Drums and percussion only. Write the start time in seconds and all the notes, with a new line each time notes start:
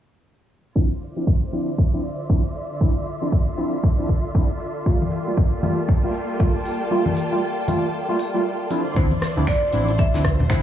0.76 kick
1.01 open hi-hat
1.27 kick
1.53 open hi-hat
1.78 kick
2.04 open hi-hat
2.30 kick
2.55 open hi-hat
2.81 kick
3.07 open hi-hat
3.32 kick
3.58 open hi-hat
3.84 kick
4.09 kick, open hi-hat
4.35 kick
4.60 open hi-hat
4.86 kick
5.02 high conga
5.12 open hi-hat
5.37 kick
5.63 open hi-hat, high conga
5.89 kick
6.14 open hi-hat
6.40 kick
6.66 open hi-hat
7.06 high conga
7.17 open hi-hat
7.68 open hi-hat, high conga
8.19 open hi-hat
8.71 open hi-hat
8.96 kick, closed hi-hat
9.11 closed hi-hat, high conga
9.22 cross-stick, snare, closed hi-hat, open hi-hat
9.37 closed hi-hat
9.47 finger snap, kick, snare, closed hi-hat
9.63 closed hi-hat
9.73 closed hi-hat, open hi-hat
9.88 closed hi-hat
9.98 kick, closed hi-hat
10.14 snare, closed hi-hat
10.25 kick, cross-stick, closed hi-hat, open hi-hat
10.40 closed hi-hat, low conga
10.50 finger snap, kick, snare, closed hi-hat